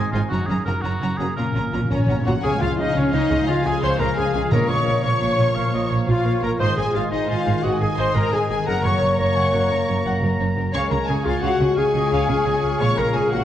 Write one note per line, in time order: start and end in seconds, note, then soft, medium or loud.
0.00 0.33 G#2 medium
0.00 0.33 D#3 medium
0.00 0.33 D#4 medium
0.00 1.09 D#4 medium
0.00 0.12 G#4 medium
0.00 0.28 G#5 medium
0.12 0.21 G#1 medium
0.12 0.21 G#2 medium
0.12 0.19 D#3 medium
0.12 0.20 G#3 medium
0.12 0.21 C4 medium
0.12 0.20 C4 medium
0.12 0.20 D#4 medium
0.12 0.21 F4 medium
0.12 0.33 G#4 medium
0.12 0.22 G#5 medium
0.29 0.38 F#1 medium
0.29 0.39 F#2 medium
0.29 1.39 F#2 medium
0.29 0.38 C#4 medium
0.29 0.48 F#4 medium
0.29 0.38 F#4 medium
0.29 1.67 A#5 medium
0.29 0.39 A#5 medium
0.47 0.55 F#1 medium
0.47 0.56 F#2 medium
0.47 0.56 C#4 medium
0.47 0.55 F#4 medium
0.47 0.64 G#4 medium
0.47 0.83 A#4 medium
0.47 0.57 A#5 medium
0.65 0.73 F#1 medium
0.65 0.74 F#2 medium
0.65 0.72 C#3 medium
0.65 0.72 A#3 medium
0.65 0.72 C#4 medium
0.65 0.74 C#4 medium
0.65 0.73 F#4 medium
0.65 1.39 F#4 soft
0.65 0.73 F#4 medium
0.65 0.83 A#4 medium
0.65 0.74 A#5 medium
0.81 0.91 F#1 medium
0.81 0.91 F#2 medium
0.81 0.91 C#4 medium
0.81 1.19 F#4 medium
0.81 0.91 F#4 medium
0.81 1.18 A#4 soft
0.81 0.91 A#5 medium
1.01 1.08 F#1 medium
1.01 1.09 F#2 medium
1.01 1.39 C#3 soft
1.01 1.09 C#4 medium
1.01 1.09 F#4 medium
1.01 1.10 A#5 medium
1.18 1.26 F#1 medium
1.18 1.27 F#2 medium
1.18 1.25 C#3 medium
1.18 1.25 A#3 medium
1.18 1.26 C#4 medium
1.18 1.27 C#4 soft
1.18 1.26 F#4 medium
1.18 1.27 F#4 medium
1.18 1.36 G#4 medium
1.18 1.54 A#4 soft
1.18 1.28 A#5 soft
1.36 1.44 A#1 medium
1.36 1.45 A#2 medium
1.36 1.44 A#2 soft
1.36 2.45 A#2 medium
1.36 1.87 C#4 medium
1.36 1.45 C#4 medium
1.36 1.45 F4 medium
1.36 1.89 A#4 medium
1.36 1.45 A#5 soft
1.45 1.52 A#2 soft
1.53 1.62 A#1 medium
1.53 1.59 A#2 soft
1.53 1.62 A#2 medium
1.53 1.63 C#4 soft
1.53 1.62 F4 soft
1.53 1.89 A#4 soft
1.53 1.63 A#5 soft
1.60 1.67 A#2 soft
1.68 1.75 A#2 soft
1.68 1.79 A#2 medium
1.68 1.78 A#3 medium
1.72 1.80 A#1 medium
1.72 1.80 A#2 medium
1.72 1.82 A#2 soft
1.72 1.80 C#4 soft
1.72 1.79 C#4 medium
1.72 3.29 F4 soft
1.72 1.80 F4 soft
1.72 1.79 F4 medium
1.72 1.81 A#5 medium
1.83 1.90 A#2 soft
1.90 1.97 A#1 medium
1.90 1.98 A#2 medium
1.90 2.23 C#4 medium
1.90 2.07 C#4 medium
1.90 2.24 C#4 medium
1.90 2.25 A#4 soft
1.90 1.98 A#4 medium
1.90 2.24 C#5 medium
1.90 1.98 A#5 soft
1.99 2.05 A#2 medium
2.06 2.15 A#1 medium
2.06 2.13 A#2 medium
2.06 2.15 A#2 medium
2.06 4.60 F3 soft
2.06 2.16 C#4 soft
2.06 2.16 F#4 medium
2.06 2.16 A#5 soft
2.14 2.20 A#2 medium
2.21 2.28 A#2 medium
2.25 2.33 A#1 medium
2.25 2.32 A#2 medium
2.25 2.33 A#2 medium
2.25 2.36 A#2 medium
2.25 2.32 A#3 medium
2.25 2.33 C#4 soft
2.25 2.33 C#4 medium
2.25 2.34 F4 soft
2.25 2.33 F4 medium
2.25 2.33 F#4 medium
2.25 2.34 F#4 medium
2.25 2.35 F#4 medium
2.25 2.45 A#4 soft
2.25 2.32 F#5 medium
2.25 2.44 F#5 medium
2.25 2.34 A#5 soft
2.43 2.51 C#2 medium
2.43 3.46 C#3 medium
2.43 2.51 C#3 medium
2.43 6.56 F3 medium
2.43 4.48 G#3 medium
2.43 2.61 G#4 loud
2.43 2.51 G#4 loud
2.43 2.51 G#4 medium
2.43 2.60 C#5 medium
2.43 3.44 F5 medium
2.43 6.56 F5 medium
2.43 2.61 G#5 medium
2.43 2.62 G#5 loud
2.53 3.38 G#3 medium
2.61 2.69 C#2 medium
2.61 2.69 C#3 medium
2.61 2.78 F4 loud
2.61 2.68 F4 medium
2.61 2.69 F4 medium
2.61 2.78 F4 medium
2.61 3.21 G#4 medium
2.61 2.78 F5 medium
2.61 2.79 F5 medium
2.70 3.72 C#5 medium
2.77 2.86 C#2 medium
2.77 2.86 C#3 medium
2.77 2.96 D#4 loud
2.77 2.95 D#4 medium
2.77 2.96 D#4 medium
2.77 2.85 G#4 medium
2.77 2.96 D#5 medium
2.77 2.99 D#5 medium
2.77 3.12 F5 medium
2.88 3.03 G#5 medium
2.96 3.03 C#2 medium
2.96 3.03 C#3 medium
2.96 3.13 C#4 loud
2.96 3.13 C#4 medium
2.96 3.04 C#4 medium
2.96 3.03 F4 medium
2.96 3.14 C#5 medium
2.96 3.13 C#5 medium
2.96 3.99 C#6 medium
3.05 3.90 G#5 medium
3.13 3.20 C#2 medium
3.13 3.20 C#3 medium
3.13 3.47 D#4 loud
3.13 3.47 D#4 medium
3.13 3.48 D#4 medium
3.13 3.29 C#5 medium
3.13 3.48 D#5 medium
3.13 3.52 D#5 medium
3.13 3.81 F5 medium
3.22 3.64 G#4 medium
3.31 3.38 C#2 medium
3.31 3.38 C#3 medium
3.31 3.55 F4 medium
3.31 3.38 F4 medium
3.39 4.43 G#3 medium
3.47 3.55 C#2 medium
3.47 4.53 C#3 medium
3.47 3.55 C#3 medium
3.47 3.65 F4 medium
3.47 3.68 F4 medium
3.47 3.66 F4 medium
3.47 3.55 G#4 medium
3.47 3.66 F5 medium
3.47 3.67 F5 medium
3.47 3.98 G#5 medium
3.57 4.33 F4 medium
3.65 3.72 C#2 medium
3.65 3.72 C#3 medium
3.65 3.73 F4 medium
3.65 4.25 G#4 medium
3.65 3.82 G#4 medium
3.65 3.83 G#4 medium
3.65 3.85 G#4 medium
3.65 3.82 G#5 medium
3.65 3.83 G#5 medium
3.73 4.77 C#5 medium
3.82 3.89 C#2 medium
3.82 3.90 C#3 medium
3.82 4.00 C5 medium
3.82 4.02 C5 medium
3.82 4.00 C5 loud
3.82 3.99 C#5 medium
3.82 4.17 F5 medium
3.82 4.00 C6 medium
3.82 4.01 C6 medium
3.91 4.08 G#5 medium
3.99 4.07 C#2 medium
3.99 4.07 C#3 medium
3.99 4.07 F4 medium
3.99 4.16 A#4 medium
3.99 4.17 A#4 medium
3.99 4.18 A#4 medium
3.99 4.53 F5 medium
3.99 4.17 A#5 medium
3.99 5.03 C#6 medium
4.16 4.24 C#2 medium
4.16 4.24 C#3 medium
4.16 4.33 G#4 loud
4.16 4.34 G#4 medium
4.16 4.25 G#4 medium
4.16 4.86 F5 medium
4.16 4.32 G#5 medium
4.16 4.24 G#5 medium
4.26 4.54 G#4 medium
4.34 4.41 C#2 medium
4.34 4.41 C#3 medium
4.34 5.38 F4 medium
4.34 4.42 F4 medium
4.34 4.52 G#4 medium
4.34 4.41 G#5 medium
4.34 4.51 G#5 medium
4.44 4.54 G#3 medium
4.51 4.59 A#1 medium
4.51 5.00 A#2 medium
4.51 4.59 A#2 medium
4.51 5.55 A#2 medium
4.51 6.56 A#3 medium
4.51 4.69 A#4 medium
4.51 4.69 C#5 medium
4.51 5.03 D#5 medium
4.51 4.59 A#5 medium
4.51 4.72 A#5 medium
4.61 5.47 F3 medium
4.69 4.76 A#1 medium
4.69 4.77 A#2 medium
4.69 4.77 F4 medium
4.69 5.29 A#4 medium
4.69 5.03 C#5 medium
4.69 5.03 C#5 loud
4.69 5.03 C#5 medium
4.69 5.03 C#6 medium
4.87 4.94 A#1 medium
4.87 4.94 A#2 medium
4.87 4.95 A#4 medium
4.87 5.20 F5 medium
4.95 5.12 A#5 medium
5.03 5.11 A#1 medium
5.03 5.11 A#2 medium
5.03 5.11 F4 medium
5.03 5.57 C#5 medium
5.03 5.89 C#5 loud
5.03 5.89 C#5 medium
5.03 5.82 C#6 medium
5.03 6.06 C#6 medium
5.03 5.89 C#6 medium
5.13 5.98 A#5 medium
5.21 5.28 A#1 medium
5.21 5.28 A#2 medium
5.21 5.38 C#5 medium
5.21 5.89 F5 medium
5.30 5.72 A#4 medium
5.39 5.46 A#1 medium
5.39 5.46 A#2 medium
5.39 5.46 F4 medium
5.48 6.49 F3 medium
5.55 5.63 A#1 medium
5.55 5.63 A#2 medium
5.55 6.61 A#2 medium
5.55 5.63 A#4 medium
5.55 5.73 F5 medium
5.65 6.41 F4 soft
5.73 5.80 A#1 medium
5.73 5.80 A#2 medium
5.73 5.81 F4 medium
5.73 6.33 A#4 medium
5.73 5.90 D#5 medium
5.82 6.61 C#5 medium
5.90 5.97 A#1 medium
5.90 5.97 A#2 medium
5.90 5.98 C#5 medium
5.90 6.07 C#5 medium
5.90 6.24 F5 medium
5.99 6.15 A#5 medium
6.07 6.15 A#1 medium
6.07 6.15 A#2 medium
6.07 6.40 F4 medium
6.07 6.15 F4 medium
6.07 6.40 F4 medium
6.07 6.41 F4 medium
6.07 6.59 C#5 medium
6.07 6.40 F5 medium
6.07 6.61 C#6 medium
6.17 6.61 A#5 medium
6.25 6.32 A#1 medium
6.25 6.32 A#2 medium
6.25 6.32 A#4 medium
6.25 6.61 F5 medium
6.34 6.61 A#4 medium
6.42 6.50 A#1 medium
6.42 6.49 A#2 medium
6.42 6.61 F4 medium
6.42 6.49 F4 medium
6.42 6.49 A#4 medium
6.42 6.59 A#4 medium
6.42 6.51 A#4 medium
6.42 6.49 A#5 medium
6.42 6.50 A#5 medium
6.51 6.61 F3 medium
6.59 6.67 G#1 medium
6.59 7.63 G#2 medium
6.59 6.67 G#2 medium
6.59 8.50 D#3 medium
6.59 8.50 G#3 medium
6.59 6.77 C5 medium
6.59 6.77 C5 loud
6.59 6.68 C5 loud
6.59 6.76 D#5 medium
6.59 7.10 D#5 medium
6.59 8.63 G#5 medium
6.59 6.66 C6 loud
6.59 6.77 C6 medium
6.68 7.55 D#3 medium
6.77 6.85 G#1 medium
6.77 6.84 G#2 medium
6.77 7.37 D#4 medium
6.77 6.94 G#4 medium
6.77 6.85 G#4 medium
6.77 6.94 G#4 medium
6.77 6.84 G#4 medium
6.77 6.94 G#5 medium
6.77 6.95 G#5 medium
6.86 7.88 G#4 medium
6.93 7.02 G#1 medium
6.93 7.01 G#2 medium
6.93 7.01 F4 medium
6.93 7.10 F4 medium
6.93 7.12 F4 medium
6.93 7.01 C5 medium
6.93 7.29 C5 medium
6.93 7.11 F5 medium
6.93 7.02 F5 medium
7.03 7.19 D#5 medium
7.11 7.19 G#1 medium
7.11 7.18 G#2 medium
7.11 7.28 D#4 medium
7.11 7.29 D#4 medium
7.11 7.19 G#4 medium
7.11 7.64 C5 medium
7.11 7.28 D#5 medium
7.11 7.29 D#5 medium
7.11 8.14 G#5 medium
7.20 8.05 D#5 medium
7.27 7.37 G#1 medium
7.27 7.35 G#2 medium
7.27 7.63 F4 medium
7.27 7.65 F4 medium
7.27 7.64 F4 medium
7.27 7.97 C5 medium
7.27 7.45 D#5 medium
7.27 7.66 F5 medium
7.27 7.63 F5 medium
7.38 7.79 D#4 soft
7.46 7.54 G#1 medium
7.46 7.53 G#2 medium
7.46 7.71 C4 medium
7.46 7.53 G#4 medium
7.56 8.58 D#3 medium
7.63 7.71 G#1 medium
7.63 7.70 G#2 medium
7.63 8.69 G#2 medium
7.63 7.80 F#4 medium
7.63 7.71 F#4 medium
7.63 7.71 C5 medium
7.63 8.50 D#5 medium
7.63 7.81 F#5 medium
7.63 7.80 F#5 medium
7.72 8.49 C4 medium
7.80 7.88 G#1 medium
7.80 7.88 G#2 medium
7.80 8.40 D#4 soft
7.80 7.88 G#4 medium
7.80 7.87 G#4 medium
7.80 7.88 G#4 medium
7.80 7.98 G#5 medium
7.80 7.87 G#5 medium
7.89 8.68 G#4 soft
7.97 8.05 G#1 medium
7.97 8.05 G#2 medium
7.97 8.14 C5 loud
7.97 8.31 C5 medium
7.97 8.05 C5 medium
7.97 8.17 C5 medium
7.97 8.14 D#5 medium
7.97 8.15 C6 medium
8.06 8.22 D#5 medium
8.14 8.22 G#1 medium
8.14 8.22 G#2 medium
8.14 8.23 G#4 medium
8.14 8.32 A#4 loud
8.14 8.33 A#4 medium
8.14 8.68 G#5 medium
8.14 8.32 A#5 medium
8.14 8.35 A#5 medium
8.23 8.68 D#5 medium
8.31 8.39 G#1 medium
8.31 8.40 G#2 medium
8.31 8.48 G#4 medium
8.31 8.49 G#4 medium
8.31 8.50 G#4 medium
8.31 8.68 C5 medium
8.31 8.39 C5 medium
8.31 8.48 G#5 medium
8.31 8.50 G#5 medium
8.41 8.69 D#4 soft
8.49 8.57 G#1 medium
8.49 8.57 G#2 medium
8.49 8.69 C4 medium
8.49 8.67 G#4 medium
8.49 8.57 G#4 medium
8.49 8.58 G#4 medium
8.49 8.67 G#5 medium
8.49 8.68 G#5 medium
8.59 8.69 D#3 medium
8.66 8.74 F#1 medium
8.66 9.69 F#2 medium
8.66 8.75 F#2 medium
8.66 10.70 F#3 medium
8.66 10.70 A#3 medium
8.66 8.84 A#4 loud
8.66 8.84 A#4 medium
8.66 9.00 F#5 medium
8.66 8.84 F#5 medium
8.66 8.87 A#5 medium
8.66 8.84 A#5 medium
8.66 10.70 A#5 medium
8.77 9.61 C#3 medium
8.84 8.91 F#1 medium
8.84 8.92 F#2 medium
8.84 9.45 F#4 medium
8.84 8.92 A#4 medium
8.84 9.17 C#5 medium
8.84 9.18 C#5 medium
8.84 9.18 C#6 medium
8.84 9.19 C#6 medium
8.94 9.96 C#5 medium
9.02 9.09 F#1 medium
9.02 9.09 F#2 medium
9.02 9.09 C#5 medium
9.11 9.27 F#5 medium
9.18 9.26 F#1 medium
9.18 9.26 F#2 medium
9.18 9.26 A#4 medium
9.18 10.03 C#5 loud
9.18 10.04 C#5 medium
9.18 9.37 A#5 medium
9.18 10.03 C#6 medium
9.18 10.04 C#6 medium
9.18 10.21 C#6 medium
9.29 10.13 F#5 medium
9.36 9.44 F#1 medium
9.36 9.43 F#2 medium
9.36 10.05 A#4 medium
9.36 9.52 F#5 medium
9.36 9.54 G#5 medium
9.46 9.87 F#4 medium
9.53 9.61 F#1 medium
9.53 9.60 F#2 medium
9.53 9.78 A#3 medium
9.53 9.61 A#4 medium
9.53 9.71 F#5 medium
9.63 10.65 C#3 medium
9.70 9.77 F#1 medium
9.70 10.75 F#2 medium
9.70 9.78 F#2 medium
9.70 9.77 C#5 medium
9.70 10.72 A#5 medium
9.79 10.56 A#3 medium
9.88 9.95 F#1 medium
9.88 9.95 F#2 medium
9.88 10.47 F#4 soft
9.88 9.95 A#4 medium
9.97 10.99 C#5 medium
10.04 10.11 F#1 medium
10.04 10.12 F#2 medium
10.04 10.39 A#4 medium
10.04 10.21 F#5 medium
10.14 10.30 F#5 medium
10.22 10.29 F#1 medium
10.22 10.30 F#2 medium
10.22 10.30 A#4 medium
10.22 11.24 C#6 medium
10.31 10.75 F#5 medium
10.39 10.46 F#1 medium
10.39 10.46 F#2 medium
10.39 10.47 C#5 medium
10.48 10.75 F#4 medium
10.56 10.64 F#1 medium
10.56 10.63 F#2 medium
10.56 10.75 A#3 medium
10.56 10.65 A#4 medium
10.66 10.74 C#3 soft
10.73 10.81 C#2 medium
10.73 10.81 C#3 medium
10.73 11.75 C#3 medium
10.73 13.44 G#3 medium
10.73 13.44 C#4 medium
10.73 10.90 C#5 medium
10.73 10.81 C#5 loud
10.73 10.90 C#5 loud
10.73 10.90 F5 medium
10.73 11.75 G#5 medium
10.73 10.93 C#6 medium
10.73 10.81 C#6 medium
10.73 13.44 C#6 medium
10.83 11.67 G#3 medium
10.91 10.98 C#2 medium
10.91 10.98 C#3 medium
10.91 13.44 G#4 medium
10.91 10.99 G#4 medium
10.91 11.08 A#4 medium
10.91 11.10 A#4 medium
10.91 11.08 A#5 medium
11.00 11.42 C#5 medium
11.09 11.15 C#2 medium
11.09 11.15 C#3 medium
11.09 11.27 G#4 medium
11.09 11.26 G#4 medium
11.09 11.16 C#5 soft
11.09 11.26 G#5 medium
11.09 11.24 G#5 medium
11.17 13.44 G#5 medium
11.25 11.32 C#2 medium
11.25 11.33 C#3 medium
11.25 11.42 F4 medium
11.25 11.43 F4 medium
11.25 11.33 G#4 medium
11.25 11.31 F5 medium
11.25 11.42 F5 medium
11.25 12.27 C#6 medium
11.42 11.49 C#2 medium
11.42 11.50 C#3 medium
11.42 11.79 F#4 medium
11.42 11.77 F#4 medium
11.42 12.02 C#5 medium
11.42 11.59 F5 medium
11.42 11.77 F#5 medium
11.51 11.93 F4 soft
11.59 11.66 C#2 medium
11.59 11.68 C#3 medium
11.59 11.84 C#4 medium
11.59 11.68 G#4 medium
11.68 12.70 G#3 medium
11.76 11.84 C#2 medium
11.76 12.82 C#3 medium
11.76 11.84 C#3 medium
11.76 12.79 G#4 medium
11.76 12.81 G#4 loud
11.76 12.79 G#4 medium
11.76 11.85 C#5 medium
11.76 11.84 F5 medium
11.76 12.83 G#5 medium
11.76 12.79 G#5 medium
11.85 12.62 C#4 medium
11.94 12.02 C#2 medium
11.94 12.01 C#3 medium
11.94 12.10 F4 medium
11.94 12.02 G#4 medium
11.94 12.11 D#5 medium
12.03 12.43 C#5 medium
12.11 12.19 C#2 medium
12.11 12.19 C#3 medium
12.11 12.53 F4 medium
12.11 12.30 C#5 medium
12.11 12.28 F5 medium
12.20 12.36 F5 medium
12.28 12.36 C#2 medium
12.28 12.36 C#3 medium
12.28 12.37 G#4 medium
12.28 12.47 F5 medium
12.28 13.32 C#6 medium
12.37 13.23 F5 medium
12.45 12.53 C#2 medium
12.45 12.53 C#3 medium
12.45 13.05 C#5 medium
12.45 12.54 C#5 medium
12.45 12.63 D#5 medium
12.54 12.97 F4 medium
12.63 12.70 C#2 medium
12.63 12.70 C#3 medium
12.63 13.44 C#4 medium
12.63 12.71 G#4 medium
12.63 13.44 F5 medium
12.71 12.81 G#3 medium
12.80 12.87 A#1 medium
12.80 12.87 A#2 medium
12.80 13.44 A#2 medium
12.80 13.00 C#5 medium
12.80 12.88 C#5 loud
12.80 12.98 C#5 medium
12.80 12.97 F5 medium
12.80 12.97 C#6 medium
12.80 13.00 C#6 medium
12.90 13.44 F3 soft
12.97 13.05 A#1 medium
12.97 13.05 A#2 medium
12.97 13.14 F4 medium
12.97 13.05 A#4 medium
12.97 13.17 A#4 medium
12.97 13.15 A#4 medium
12.97 13.05 A#4 soft
12.97 13.15 A#5 medium
13.06 13.44 C#5 medium
13.14 13.22 A#1 medium
13.14 13.22 A#2 medium
13.14 13.44 F4 medium
13.14 13.32 G#4 medium
13.14 13.22 C#5 medium
13.14 13.34 G#5 medium
13.14 13.33 G#5 medium
13.24 13.40 F5 medium
13.32 13.40 A#1 medium
13.32 13.39 A#2 medium
13.32 13.44 F#4 medium
13.32 13.39 A#4 medium
13.32 13.44 F#5 medium
13.32 13.44 C#6 medium